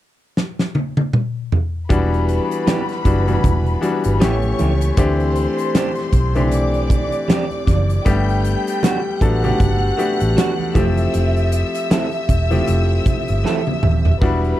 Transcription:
0.37 snare
0.59 snare
0.75 high tom
0.97 high tom
1.13 mid tom
1.52 floor tom
1.89 E1 E3 G3 B3 D4 F#4 B4 B5, kick, closed hi-hat, muted conga
2.14 closed hi-hat
2.29 closed hi-hat
2.51 closed hi-hat
2.66 E3 B3 D4 G4, snare, closed hi-hat, high conga
2.89 snare, closed hi-hat
3.05 F#1 E3 G3 B3 D4 F#4, kick, closed hi-hat
3.27 E3 G3 B3 D4 F#4, closed hi-hat, low conga
3.44 E1, kick, closed hi-hat, muted conga, low conga
3.66 closed hi-hat
3.81 E3 G3 B3 D4 F#4, closed hi-hat, muted conga
4.04 G1, closed hi-hat
4.20 A1 E3 A3 B3 C#4 G4 C#5 C#6, snare, closed hi-hat, high conga
4.42 closed hi-hat, high conga
4.59 C#2 E3 A3 C#4 G4, closed hi-hat, high conga
4.81 closed hi-hat
4.97 D2 E3 A3 C4 D4 G4 C5 C6, kick, closed hi-hat, muted conga
5.20 closed hi-hat
5.36 closed hi-hat
5.58 closed hi-hat
5.75 G3 C4 D4 G4, snare, closed hi-hat, high conga
5.95 snare, closed hi-hat
6.13 B1, kick, closed hi-hat
6.35 E3 A3 C4 D4 G4, closed hi-hat, low conga
6.51 D5 D6, closed hi-hat, muted conga
6.74 closed hi-hat
6.90 kick, closed hi-hat, muted conga, low conga
7.12 closed hi-hat
7.28 G3 C4 D4 G4, snare, closed hi-hat, high conga
7.51 closed hi-hat, high conga
7.67 F#1, kick, snare, closed hi-hat, high conga
7.90 closed hi-hat
8.05 G1 G3 A3 B3 D4 G4 G5 G6, kick, closed hi-hat, muted conga
8.29 closed hi-hat
8.45 closed hi-hat
8.67 closed hi-hat
8.83 F#3 B3 D4 F#4, snare, closed hi-hat, high conga
9.21 A1 F#3 A3 B3 D4 A4 F#5 F#6, kick, closed hi-hat
9.43 A3 B3 D4 F#4 G4, closed hi-hat, low conga
9.60 G1, kick, closed hi-hat, low conga
9.97 A3 B3 D4 F#4 G4, closed hi-hat, muted conga
10.20 A1, closed hi-hat
10.36 F#3 B3 D4 F#4, snare, closed hi-hat, high conga
10.59 high conga
10.74 F1 F3 A3 C4 E4 G4 A4 E5 E6, kick, closed hi-hat, high conga
10.97 closed hi-hat
11.14 F1, closed hi-hat, muted conga
11.36 closed hi-hat
11.52 closed hi-hat
11.75 closed hi-hat
11.90 A3 C4 E4 A4, snare, closed hi-hat, high conga
12.12 closed hi-hat
12.29 E1, kick, closed hi-hat
12.50 F3 A3 C4 E4 G4, closed hi-hat, low conga
12.67 F1, closed hi-hat, muted conga
13.06 kick, closed hi-hat, muted conga, low conga
13.28 G1, closed hi-hat
13.44 A3 C4 E4 A4, snare, high conga
13.67 high tom, high conga
13.83 D#1, mid tom, high conga
14.05 floor tom
14.21 E1 G3 B3 D4 E4 F#4 B4 B5, kick, crash, muted conga
14.45 closed hi-hat

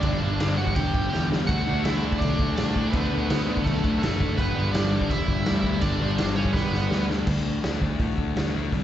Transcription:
Already playing: D4 D5
0.03 G1 G2 D3 G3, kick, crash
0.22 G1 G2 D3 G3
0.40 G1 G2 D3 G3, snare, crash
0.57 G2 D3 G3 F#4 F#5
0.67 kick
0.74 E1 G2 D3 G3 G4 G5, kick, crash
0.94 G1 G2 D3 G3, kick
1.13 E2 G2 D3 G3, snare
1.32 G2 D3 G3, snare
1.47 D2 D3 A3 D4 F#4 F#5, kick, crash
1.67 D2 D3 A3 D4
1.84 D2 D3 A3 D4 E4 E5, snare, crash
2.04 D3 A3 D4
2.12 kick
2.18 B1 D4 D5, kick, crash
2.22 D3 A3 D4
2.39 D2 D3 A3 D4, kick
2.56 A2 D3 A3 D4 D5, snare, crash
2.76 D3 A3 D4, kick
2.90 D2 B4, kick, crash
2.94 D3 A3 B3 D4
3.12 D2 D3 A3 D4
3.30 D2 D3 A3 D4, snare, crash
3.49 D3 A3 D4
3.57 kick
3.63 B1 D3 A3 D4 A4, kick, crash
3.84 D2 D3 A3 D4, kick
3.99 A3 A4
4.03 F#1 D3 A3 D4, snare, crash
4.21 D3 A3 D4, kick
4.37 G1 G2 D3 G3 B3 B4, kick, crash
4.57 G1 G2 D3 G3
4.73 G1 G2 D3 G3 D4 D5, snare, crash
4.93 G2 D3 G3
5.01 kick
5.10 E1 G2 D3 G3 E4 E5, kick, crash
5.28 G1 G2 D3 G3, kick
5.46 D2 G2 D3 G3, snare, crash
5.64 G2 D3 G3, kick
5.81 G1 G2 D3 G3 D4 D5, kick, crash
6.00 G1 G2 D3 G3
6.18 G1 G2 D3 G3, snare, crash
6.36 G2 D3 G3 C#4 C#5
6.45 kick
6.53 E1 G2 D3 G3 B3 B4, kick, snare
6.72 G1 G2 D3 G3, snare
6.91 D2 G2 D3 G3, snare
7.10 G2 D3 G3, snare
7.27 D2 D3 A3 D4, kick, crash
7.45 D2
7.63 D2 D3 A3 D4, snare, open hi-hat
7.82 D2 D3 A3 D4, kick
7.99 A2 D3 A3 D4, kick, open hi-hat
8.18 D2, kick
8.36 D2 D3 A3 D4, snare, open hi-hat
8.54 D2 D3 A3 D4
8.72 C2 C3 G3 C4, kick, open hi-hat

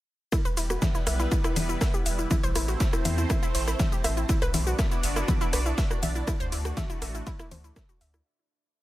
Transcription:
0.32 G3 B3 E4 B4, kick, cross-stick, ride, shaker
0.45 E1 B4, ride, shaker
0.57 E1 E4, open hi-hat, ride, shaker
0.70 F#4, cross-stick, shaker
0.82 E5, kick, snare, ride, low conga, shaker
0.95 E4, snare, shaker
1.07 B1 E5, cross-stick, open hi-hat, ride, shaker
1.20 E4, snare, shaker
1.32 E4, kick, ride, shaker
1.44 E4, cross-stick, shaker
1.56 E1 B4, open hi-hat, ride, low conga, shaker
1.69 E4, shaker
1.81 E5, kick, cross-stick, snare, open hi-hat, shaker
1.94 G4, shaker
2.06 E1 E5, open hi-hat, ride, shaker
2.19 E4, shaker
2.31 A3 C4 E4 C5, kick, ride, low conga, shaker
2.43 A1 C5, ride, shaker
2.55 A1 E4, cross-stick, open hi-hat, ride, shaker
2.68 F#4, ride, shaker
2.80 E5, kick, snare, ride, shaker
2.93 E4, cross-stick, shaker
3.05 E2 E5, open hi-hat, ride, low conga, shaker
3.18 E4, shaker
3.30 E4, kick, cross-stick, ride, shaker
3.43 E4, shaker
3.55 A1 C5, open hi-hat, ride, shaker
3.67 E4, cross-stick, ride, shaker
3.79 E5, kick, snare, ride, low conga, shaker
3.92 G4, shaker
4.04 A1 E5, cross-stick, open hi-hat, ride, shaker
4.17 E4, shaker
4.29 B3 D4 E4 F#4 D5, kick, ride, shaker
4.42 B1 B4, cross-stick, ride, shaker
4.54 B1 E4, open hi-hat, ride, low conga, shaker
4.67 F#4, shaker
4.79 E5, kick, cross-stick, snare, ride, shaker
4.91 E4, snare, shaker
5.03 F#1 E5, open hi-hat, ride, shaker
5.16 E4, cross-stick, snare, shaker
5.28 E4, kick, ride, low conga, shaker
5.41 E4, shaker
5.53 B1 B4, cross-stick, open hi-hat, ride, shaker
5.66 E4, shaker
5.78 E5, kick, snare, open hi-hat, shaker
5.91 F#4, cross-stick, shaker
6.03 B1 E5, open hi-hat, ride, low conga, shaker
6.15 E4, shaker
6.27 A3 E4 F#4, kick, cross-stick, ride, shaker
6.40 D2 C5, ride, shaker
6.52 D2 E4, open hi-hat, ride, shaker
6.65 F#4, cross-stick, ride, shaker
6.77 E5, kick, snare, ride, low conga, shaker
6.90 E4, shaker
7.02 A1 E5, cross-stick, open hi-hat, ride, shaker
7.15 E4, shaker
7.27 E4, kick, ride, shaker
7.39 E4, cross-stick, shaker
7.51 D2 C5, open hi-hat, ride, low conga, shaker
7.64 E4, ride, shaker
7.76 E5, kick, cross-stick, snare, ride, shaker
7.89 F#4, shaker
8.01 D2 E5, open hi-hat, ride, shaker
8.14 E4, cross-stick, shaker

